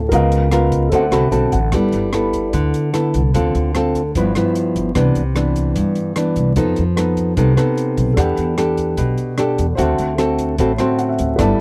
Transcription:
Already playing: upright bass D2, nylon-string guitar A2, grand piano A4 C5 E5 F5
0.09 upright bass C#2, nylon-string guitar C#3 B3 F4 A#4, grand piano A#4, kick, closed hi-hat
0.13 grand piano D#5 F5
0.32 closed hi-hat
0.51 nylon-string guitar B3 F4 A#4, cross-stick, closed hi-hat
0.72 kick, closed hi-hat
0.89 upright bass D2, nylon-string guitar D3 C4 F#4 A4, grand piano A4 C5 E5, kick, closed hi-hat
0.95 grand piano F#5
1.11 upright bass C2, nylon-string guitar C4 F#4 A4, grand piano B5, cross-stick, closed hi-hat
1.31 upright bass B1, nylon-string guitar C4 F#4 A4, grand piano A5, closed hi-hat
1.52 upright bass A1, grand piano F#5, kick, closed hi-hat
1.72 upright bass G1, nylon-string guitar G3 B3 E4 A4, kick, cross-stick, closed hi-hat
1.92 upright bass G1, closed hi-hat
2.13 nylon-string guitar B3 E4 A4, cross-stick, closed hi-hat
2.33 kick, closed hi-hat
2.53 upright bass D2, nylon-string guitar D3, kick, closed hi-hat
2.74 closed hi-hat
2.93 nylon-string guitar B3 E4 A4, cross-stick, closed hi-hat
3.14 upright bass C2, kick, closed hi-hat
3.34 upright bass D2, nylon-string guitar D3 C4 F4 A4, kick, closed hi-hat
3.55 upright bass D2, closed hi-hat
3.75 nylon-string guitar C4 F4 A4, cross-stick, closed hi-hat
3.95 kick, closed hi-hat
4.15 upright bass G1, nylon-string guitar G2 F3 B3 E4, kick, closed hi-hat
4.35 nylon-string guitar F3 B3 E4, cross-stick, closed hi-hat
4.55 closed hi-hat
4.76 upright bass G1, kick, closed hi-hat
4.95 upright bass C2, nylon-string guitar C3 E3 B3 D4, kick, cross-stick, closed hi-hat
5.15 upright bass C2, closed hi-hat
5.35 nylon-string guitar E3 B3 D4, cross-stick, closed hi-hat
5.56 kick, closed hi-hat
5.76 nylon-string guitar G2, upright bass G2, kick, closed hi-hat
5.95 closed hi-hat
6.16 nylon-string guitar E3 B3 D4, cross-stick, closed hi-hat
6.36 upright bass C2, kick, closed hi-hat
6.56 upright bass F2, nylon-string guitar F3 B3 D#4 A4, kick, closed hi-hat
6.76 upright bass F2, closed hi-hat
6.96 nylon-string guitar B3 D#4 A4, cross-stick, closed hi-hat
7.17 kick, closed hi-hat
7.37 upright bass C2, nylon-string guitar C3 B3 D#4 A4, kick, closed hi-hat
7.57 nylon-string guitar B3 D#4 A4, cross-stick, closed hi-hat
7.77 closed hi-hat
7.97 upright bass B1, kick, closed hi-hat
8.14 upright bass E2, nylon-string guitar E3 D4 G4, grand piano A4 D5, kick, cross-stick, closed hi-hat
8.18 nylon-string guitar A4, grand piano F#5 G5
8.37 upright bass E2, closed hi-hat
8.58 nylon-string guitar D4 G4 A4, cross-stick, closed hi-hat
8.77 kick, closed hi-hat
8.97 upright bass B1, nylon-string guitar B2, kick, closed hi-hat
9.18 closed hi-hat
9.38 nylon-string guitar D4 G4 A4, cross-stick, closed hi-hat
9.58 upright bass E2, kick, closed hi-hat
9.75 upright bass D2, nylon-string guitar D3 C4 F#4 A4, grand piano C5 E5, kick, closed hi-hat
9.79 grand piano F#5 A5
9.98 upright bass D2, closed hi-hat
10.18 nylon-string guitar C4 F#4 A4, cross-stick, closed hi-hat
10.38 kick, closed hi-hat
10.58 upright bass A1, nylon-string guitar A2 C4 F#4 A4, kick, closed hi-hat
10.77 nylon-string guitar C4 F#4 A4, grand piano C5 E5 F#5 C6, cross-stick, closed hi-hat
10.98 grand piano F#5, closed hi-hat
11.09 grand piano E5
11.19 upright bass D2, kick, closed hi-hat
11.36 upright bass G1, nylon-string guitar G3 B3 E4 A4, grand piano B4 D5 E5, kick, cross-stick, closed hi-hat
11.42 grand piano A5

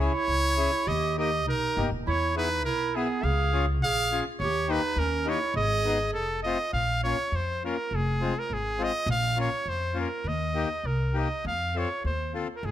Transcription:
Already playing: trumpet C#5
0.00 accordion C#4 E4 G#4, clarinet E4
0.28 upright bass C#2
0.57 accordion C#4 E4 G#4
0.87 upright bass D#2, clarinet G4, trumpet D#5
1.18 accordion A#3 D#4 G4, clarinet G4, trumpet D#5
1.47 upright bass B1, clarinet D#4, trumpet A#4
1.77 upright bass G1, accordion A#3 D#4 G4
1.91 upright bass D#1
2.07 upright bass E2, clarinet E4, trumpet C#5
2.36 accordion B3 E4 G#4, clarinet D#4, trumpet B4
2.65 upright bass B1, clarinet E4, trumpet A#4
2.95 accordion B3 E4 G#4, clarinet B3, trumpet G#4
3.23 upright bass C#2, clarinet G#4, trumpet F5
3.53 accordion C#4 F4 G#4
3.82 upright bass A#1, clarinet G#4, trumpet F5
4.12 accordion C#4 F4 G#4
4.40 upright bass D#2, clarinet G4, trumpet C#5
4.69 accordion A#3 D#4 G4, clarinet D#4, trumpet B4
4.96 upright bass D#2, clarinet C#4, trumpet A#4
5.26 accordion A#3 D#4 G4, trumpet C#5
5.30 clarinet E4
5.54 upright bass G#1, clarinet G#4, trumpet D#5
5.85 accordion B3 D#4 G#4
6.14 upright bass F1, trumpet A4
6.43 accordion A3 C4 F4, trumpet D#5
6.73 upright bass A#1, trumpet F5
7.04 accordion A#3 C#4 F4, trumpet C#5
7.32 upright bass F2, trumpet C5
7.64 accordion A#3 C#4 F4, trumpet A#4
7.91 upright bass F1, trumpet G#4
8.21 accordion G#3 C4 F4
8.39 trumpet A#4
8.50 upright bass G#1, trumpet G#4
8.79 accordion G#3 C4 F4
8.84 trumpet D#5
9.06 upright bass A#1
9.11 trumpet F5
9.36 accordion A#3 C#4 F4
9.40 trumpet C#5
9.66 upright bass F2, trumpet C5
9.94 accordion A#3 C#4 F4
10.00 trumpet A#4
10.24 upright bass D#2, trumpet D#5
10.55 accordion A#3 D#4 G4
10.84 upright bass C2, trumpet A#4
11.14 accordion A#3 D#4 G4, trumpet D#5
11.45 upright bass F2, trumpet F5
11.75 accordion C4 F4 A4, trumpet C#5
12.04 upright bass D#2, trumpet C5
12.34 accordion C4 F4 A4
12.56 trumpet A#4
12.63 upright bass G#2, trumpet G#4

